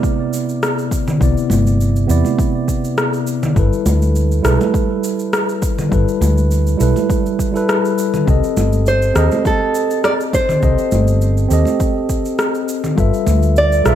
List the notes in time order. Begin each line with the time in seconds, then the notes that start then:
Already playing: C3 B3 E4 D5
0.03 kick, cabasa
0.33 cabasa
0.49 cabasa
0.63 cross-stick, cabasa
0.78 cabasa
0.91 kick, cabasa
1.08 low conga, cabasa
1.18 C2 C3 B3 E4, kick, cabasa
1.23 D5
1.37 cabasa
1.50 G1, high conga, cabasa
1.67 cabasa
1.81 cabasa
1.96 cabasa
2.07 E2 C3 B3 E4, cabasa
2.11 D5
2.25 high conga, cabasa
2.39 kick, cabasa
2.68 kick, cabasa
2.84 cabasa
2.98 cross-stick, cabasa
3.13 cabasa
3.27 cabasa
3.43 low conga, cabasa
3.55 G1 G3 E4 A4, kick, cabasa
3.59 B4
3.73 cabasa
3.86 D2, high conga, cabasa
4.02 cabasa
4.16 cabasa
4.32 cabasa
4.42 B1 G3 E4 A4, cross-stick, cabasa
4.47 B4
4.61 high conga, cabasa
4.74 kick, cabasa
5.04 cabasa
5.19 cabasa
5.33 cross-stick, cabasa
5.49 cabasa
5.62 kick, cabasa
5.79 low conga, cabasa
5.89 G1 G3 E4 A4, kick, cabasa
5.94 B4
6.08 cabasa
6.21 D2, high conga, cabasa
6.38 cabasa
6.51 cabasa
6.67 cabasa
6.78 B1 G3 E4 A4, cabasa
6.82 B4
6.96 high conga, cabasa
7.10 kick, cabasa
7.26 cabasa
7.39 kick, cabasa
7.52 G3 E4 A4, cabasa
7.57 B4
7.69 cross-stick, cabasa
7.85 cabasa
7.98 cabasa
8.14 low conga, cabasa
8.26 C2 C4 G4 A4, kick, cabasa
8.30 D#5
8.44 cabasa
8.57 G1, high conga, cabasa
8.73 cabasa
8.86 C5, cabasa
9.02 cabasa
9.14 D#2 C4 G4 A4, cross-stick, cabasa
9.18 D#5
9.31 high conga, cabasa
9.45 A4, kick, cabasa
9.75 cabasa
9.91 cabasa
10.04 D5, cross-stick, cabasa
10.20 cabasa
10.33 C5, kick, cabasa
10.49 low conga, cabasa
10.60 C2 C4 G4 A4, kick, cabasa
10.65 D#5
10.78 cabasa
10.92 G1, high conga, cabasa
11.08 cabasa
11.22 cabasa
11.37 cabasa
11.49 D#2 C4 G4 A4, cabasa
11.53 D#5
11.65 high conga, cabasa
11.80 kick, cabasa
12.09 kick, cabasa
12.25 cabasa
12.39 cross-stick, cabasa
12.55 cabasa
12.69 cabasa
12.84 low conga, cabasa
12.96 G1 G3 F4 A4 B4, kick, cabasa
13.00 E5
13.14 cabasa
13.27 D2, high conga, cabasa
13.43 cabasa
13.56 D5, cabasa
13.72 cabasa
13.84 B1 G3 F4 A4 B4, cross-stick, cabasa
13.88 E5